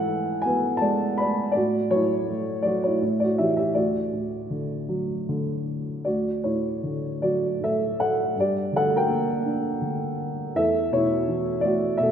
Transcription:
Already playing: G#2 E3 A4 B4 F#5 G#5
0.42 B3 G#5
0.47 B4
0.77 A5
0.82 G#3 D5
1.18 D5 B5
1.52 A2 D5
1.56 F#4
1.90 F#3 C#5
1.96 E4
2.28 A3
2.62 F#3 D5
2.67 F#4
2.83 E4 C#5
3.02 A2
3.20 D5
3.24 F#4
3.38 E3 G4 E5
3.57 G4 E5
3.74 D2 F#4 D5
4.13 A2
4.50 D3
4.89 F#3
5.29 D3
6.05 D2 F#4 D5
6.44 A2 E4 C#5
6.83 D3
7.22 F#3 F#4 D5
7.60 A2 A4 E5
8.00 A4 F#5
8.36 G2
8.40 G4 D5
8.72 D3
8.76 A4 F#5
8.96 A#4 G5
9.08 A#3
9.45 D4
9.81 D3
10.55 E2 A4 E5
10.92 B2 C#5
10.96 E4
11.27 E3
11.61 A3 D5
11.66 F#4
11.97 B2 E5
12.03 A4

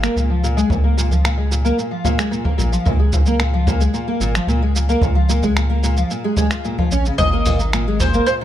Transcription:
0.03 A#3, finger snap, shaker
0.16 C#2 A#2, shaker
0.30 F3
0.44 A#2, shaker
0.57 G#3, shaker
0.70 C#2 A#2, kick, shaker
0.84 A#3
0.97 A#2, shaker
1.11 F3, kick, shaker
1.24 A#2, finger snap, shaker
1.38 G#3
1.51 A#2, shaker
1.65 A#3, shaker
1.78 A#2, shaker
1.91 F3
2.05 A#2, kick, shaker
2.18 G#3, finger snap, shaker
2.31 A#2, shaker
2.44 A#3, kick
2.58 A#1 A#2, shaker
2.72 F3, shaker
2.85 C#2 A#2, kick, shaker
2.99 G#3
3.13 A#2, kick, shaker
3.26 A#3, shaker
3.40 A#2, finger snap, shaker
3.54 F3
3.67 A#2, kick, shaker
3.80 G#3, shaker
3.94 A#2, shaker
4.08 A#3
4.20 G#1 A#2, shaker
4.35 F3, finger snap, shaker
4.47 C#2 A#2, shaker
4.62 G#3
4.76 A#2, shaker
4.89 A#3, shaker
5.02 C#2 A#2, kick, shaker
5.15 F3
5.29 A#2, shaker
5.43 G#3, kick, shaker
5.56 A#2, finger snap, shaker
5.70 A#3
5.83 A#2, shaker
5.97 F3, shaker
6.10 A#2, shaker
6.24 G#3
6.37 G#3, kick, shaker
6.51 F4, finger snap, shaker
6.65 A#2, shaker
6.78 F3, kick
6.91 A#1 C#4, shaker
7.05 C#3, shaker
7.18 G#1 A#2 D#5, kick, shaker
7.33 A#3
7.46 A#2, kick, open hi-hat, shaker
7.59 D#3, shaker
7.73 A#2, finger snap, shaker
7.88 G#3
8.00 A#2 C5, kick, open hi-hat, shaker
8.14 A#3, shaker
8.26 A#2 C5, shaker
8.41 D#3

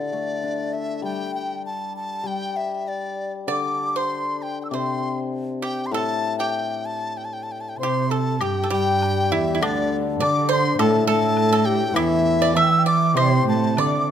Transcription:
Already playing: D3 D5
0.12 A3
0.44 D4
0.73 E5
1.02 G3 G5
1.34 G5
1.66 A5
1.96 A5
2.24 G3 G5
2.56 E5
2.88 D5
3.47 D3 D5 D6
3.96 C5 C6
4.42 G5
4.62 G5 E6
4.70 C3 C5 D6
4.75 C6
5.62 G4 G5
5.86 C6
5.91 A2 A4 A5
6.39 G4 G5
6.86 A5
7.17 G5
7.25 A5
7.33 G5
7.43 A5
7.52 G5
7.61 A5
7.69 G5
7.76 C3 C5 A5 C6
7.83 G4
8.09 A4 A5
8.40 G2 G4 G5, high woodblock
8.64 A4
8.70 G2 G3 G4 G5
9.02 low woodblock
9.31 E2 E4 E5
9.55 E4
9.61 D2 D3 D4 D5, high woodblock
10.20 D3 D5 D6, low woodblock
10.49 C5 C6
10.79 A2 A4 A5, high woodblock
11.07 A2 A4 A5
11.37 low woodblock
11.53 A4
11.65 G4 G5
11.88 G4
11.94 E2 E3 E4 E5, high woodblock
12.42 D5
12.54 E3 E5 E6, low woodblock
12.62 G5
12.71 E5
12.79 G5
12.86 D5 E5 D6
13.14 C3 C5 C6, high woodblock
13.46 A2 A5
13.77 D3 D5 D6, low woodblock

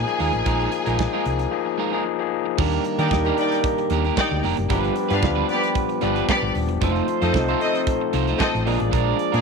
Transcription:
Already playing: F3 A#3 D#4 G#4 G#5
0.06 F3 A#3 D#4 G#4, muted clean electric guitar stroke, closed hi-hat
0.19 D#2 G#3 D#4 F4 A#4, open hi-hat
0.33 A1, muted clean electric guitar stroke, closed hi-hat
0.45 A#1 F3 G#3 A#3 D#4 F4 G#4 A#4, kick, closed hi-hat
0.60 closed hi-hat
0.71 muted clean electric guitar stroke, closed hi-hat
0.86 A#1 F3 G#3 A#3 D#4 F4 G#4 A#4, closed hi-hat
0.99 muted clean electric guitar stroke, kick, snare
1.13 F3 G#3 A#3 D#4 F4 G#4 A#4
1.25 C2, closed hi-hat
1.39 muted clean electric guitar stroke, closed hi-hat
1.51 F3 A#3 D#4 G#4, muted clean electric guitar stroke
1.66 muted clean electric guitar stroke
1.78 G#3 D#4 F4 A#4
1.93 F3 G#3 A#3 D#4 F4 G#4 A#4
2.06 muted clean electric guitar stroke
2.19 F3 A#3 D#4 G#4, muted clean electric guitar stroke
2.45 muted clean electric guitar stroke
2.58 D#2 D#3 G3 A#3 D4 D#4 G4 A#4, kick, crash
2.73 closed hi-hat
2.85 muted clean electric guitar stroke, closed hi-hat
2.98 D#3 G3 A#3 D4 D#4 G4 A#4 D5 G5, closed hi-hat
3.11 D#2, muted clean electric guitar stroke, kick, snare
3.24 D#3 G3 A#3 D4 G4 A#4, closed hi-hat
3.38 D#4 D5 G5, muted clean electric guitar stroke, closed hi-hat
3.52 muted clean electric guitar stroke, snare, closed hi-hat
3.64 muted clean electric guitar stroke, kick, closed hi-hat
3.78 muted clean electric guitar stroke, closed hi-hat
3.90 D#2 A#3 D4 G4 A#4, closed hi-hat
4.04 A#3 D4 G4 A#4, closed hi-hat
4.17 D#4 D5 G5, kick, snare
4.31 D2, muted clean electric guitar stroke
4.43 F1 A#3 D4 G4 A#4, open hi-hat
4.57 F#1, muted clean electric guitar stroke, closed hi-hat
4.69 G1 F3 G3 B3 D4 F4 G4 B4, kick, closed hi-hat
4.84 closed hi-hat
4.96 muted clean electric guitar stroke, closed hi-hat
5.09 G2 F3 G3 B3 D4 F4 G4 B4 F5, closed hi-hat
5.21 D2, muted clean electric guitar stroke, kick, snare
5.35 G3 D4 F4 B4
5.48 B3 G4 D5, muted clean electric guitar stroke, closed hi-hat
5.62 muted clean electric guitar stroke, closed hi-hat
5.75 muted clean electric guitar stroke, kick, closed hi-hat
5.89 muted clean electric guitar stroke, closed hi-hat
6.01 G1 F3 G3 B3 D4 F4 G4 B4, closed hi-hat
6.16 G3 D4 F4 B4, closed hi-hat
6.28 B3 G4 D5, muted clean electric guitar stroke, kick, snare
6.42 G1, muted clean electric guitar stroke
6.55 D#1, open hi-hat
6.69 E1, muted clean electric guitar stroke, closed hi-hat
6.81 F1 F3 A3 C4 D#4 F4 A4 C5, kick, closed hi-hat
6.96 closed hi-hat
7.08 muted clean electric guitar stroke, closed hi-hat
7.22 F2 F3 A3 C4 D#4 F4 A4 C5 D#5, closed hi-hat
7.34 C2, muted clean electric guitar stroke, kick, snare
7.48 F3 A3 C4 D#4 F4 A4 C5, closed hi-hat
7.61 C4 A4 D#5, muted clean electric guitar stroke, closed hi-hat
7.75 muted clean electric guitar stroke, closed hi-hat
7.87 muted clean electric guitar stroke, kick, closed hi-hat
8.01 muted clean electric guitar stroke
8.13 C2 A3 D#4 F4 C5, closed hi-hat
8.27 A3 D#4 F4 C5, closed hi-hat
8.39 C4 A4 D#5, kick, snare
8.54 A1, muted clean electric guitar stroke, closed hi-hat
8.66 A#1 F3 G#3 A#3 D4 F4 G#4 A#4 D5, open hi-hat
8.80 A1, muted clean electric guitar stroke, closed hi-hat
8.92 A#1 G#3 D4 F4 A#4, kick, closed hi-hat
9.19 muted clean electric guitar stroke, closed hi-hat
9.32 A#2 F3 G#3 A#3 D4 F4 G#4 A#4 D5, closed hi-hat

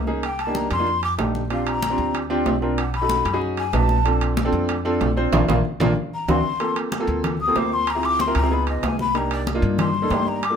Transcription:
Already playing: C2
0.07 A#3 C#4 D#4 G#4, high conga
0.23 G5, high conga, high timbale
0.39 A5, high conga, high timbale
0.47 A#3 D4 D#4 G4
0.55 A#5, high conga, low timbale
0.71 F2 C6, high conga, high timbale
0.79 A#3 D4 D#4 F4
0.87 high conga
1.03 D6, high conga, high timbale
1.18 A#1 A3 D4 D#4 G4, high conga, high timbale, low timbale
1.35 high conga
1.50 C4 D4 F4 G4 F5, high conga, high timbale
1.66 A#5, high conga, high timbale
1.82 high conga, high timbale, low timbale
1.90 C4 D4 F4 G4
1.98 D2, high conga
2.14 high conga, high timbale
2.30 C4 D4 F4 G4, high conga
2.46 B1, high conga, high timbale, low timbale
2.62 C4 D4 F4 A#4, high conga
2.78 F#5, high conga, high timbale
2.94 B5, high conga, high timbale
3.01 C#4 D#4 F#4 A4
3.09 high conga, low timbale
3.25 F#2, high conga, high timbale
3.33 C#4 D#4 F#4 G#4
3.41 high conga
3.57 G#5, high conga, high timbale
3.73 A#1 C#4 D#4 F#4 B4 A5, high conga, high timbale, low timbale
3.89 high conga
4.05 C4 D4 F4 A4, high conga, high timbale
4.21 high conga, high timbale
4.37 high conga, high timbale, low timbale
4.45 C4 D4 F4 A4
4.52 F2, high conga
4.69 high conga, high timbale
4.85 C4 D4 F4 A4, high conga
5.01 A#1, high conga, high timbale, low timbale
5.17 C4 D4 F4 C5, high conga
5.32 A#1 A#3 D4 F4, low conga, high timbale
5.48 A#1 A#3 D4 F4, low conga, high timbale
5.80 A#1 A#3 D4 F4, low conga, high timbale
6.14 A#5
6.28 D2 C4 D4 F#4 C6, low conga, high timbale
6.60 A#3 C4 F4 A4, high conga, high timbale
6.76 high conga, high timbale
6.92 high conga, high timbale, low timbale
7.00 A#3 C4 F4 A4
7.07 D2, high conga
7.24 high conga, low conga, high timbale
7.40 D#6, high conga
7.48 A#3 C4 F4 A4
7.55 D2 A#3 C4 F4 C5 D6, high conga, high timbale, low timbale
7.72 C6, high conga
7.87 A#5, high conga, high timbale
7.95 C4 E4 F4 G#4
8.03 D6, high conga, high timbale
8.19 C6, high conga, low timbale
8.27 C4 E4 F4 A#4
8.35 C#2 A#5, high conga, high timbale
8.43 C4 E4 F4 G#4
8.51 B3 D#4 F4 G#4 B5, high conga
8.67 D#5, high conga, high timbale
8.83 C2 G#5, high conga, high timbale, low timbale
8.99 B5, high conga
9.15 A#3 D4 D#4 G4 A#5, high conga, high timbale
9.31 D5, high conga, high timbale
9.47 high conga, high timbale, low timbale
9.55 A#3 D4 D#4 F4
9.62 G2, high conga
9.78 C6, high conga, low conga, high timbale
9.95 high conga
10.02 A#3 D4 D#4 A4
10.10 G2 A#3 D4 D#4 G4, high conga, high timbale, low timbale
10.27 A#5, high conga
10.42 D6, high conga, high timbale
10.50 A#3 D4 F4 A4

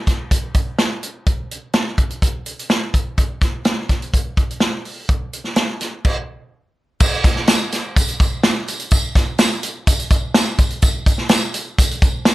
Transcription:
0.07 kick, snare, closed hi-hat
0.31 kick, closed hi-hat
0.54 kick, closed hi-hat
0.79 snare, closed hi-hat
1.03 closed hi-hat
1.26 kick, closed hi-hat
1.51 closed hi-hat
1.73 snare, closed hi-hat
1.98 kick, closed hi-hat
2.10 closed hi-hat
2.22 kick, closed hi-hat
2.46 closed hi-hat
2.59 closed hi-hat
2.70 snare, closed hi-hat
2.94 kick, closed hi-hat
3.18 kick, closed hi-hat
3.42 kick, snare, closed hi-hat
3.65 snare, closed hi-hat
3.89 kick, snare, closed hi-hat
4.02 closed hi-hat
4.14 kick, closed hi-hat
4.37 kick, closed hi-hat
4.51 closed hi-hat
4.60 snare, closed hi-hat
4.85 open hi-hat
5.09 kick, closed hi-hat
5.33 closed hi-hat
5.44 snare
5.56 snare, closed hi-hat
5.81 snare, closed hi-hat
6.05 kick, crash
7.00 kick, crash, tambourine
7.24 kick, snare, closed hi-hat, tambourine
7.36 snare
7.47 snare, closed hi-hat, tambourine
7.72 snare, closed hi-hat, tambourine
7.96 kick, closed hi-hat, tambourine
8.08 closed hi-hat
8.20 kick, closed hi-hat, tambourine
8.43 snare, closed hi-hat, tambourine
8.68 closed hi-hat, tambourine
8.80 closed hi-hat
8.91 kick, closed hi-hat, tambourine
9.15 kick, snare, closed hi-hat, tambourine
9.38 snare, closed hi-hat, tambourine
9.63 closed hi-hat, tambourine
9.87 kick, closed hi-hat, tambourine
9.99 closed hi-hat
10.10 kick, closed hi-hat, tambourine
10.34 snare, closed hi-hat, tambourine
10.59 kick, closed hi-hat, tambourine
10.70 closed hi-hat
10.82 kick, closed hi-hat, tambourine
11.06 kick, closed hi-hat, tambourine
11.18 snare
11.29 snare, closed hi-hat, tambourine
11.54 closed hi-hat, tambourine
11.79 kick, closed hi-hat, tambourine
11.91 closed hi-hat
12.02 kick, closed hi-hat, tambourine
12.25 snare, closed hi-hat, tambourine

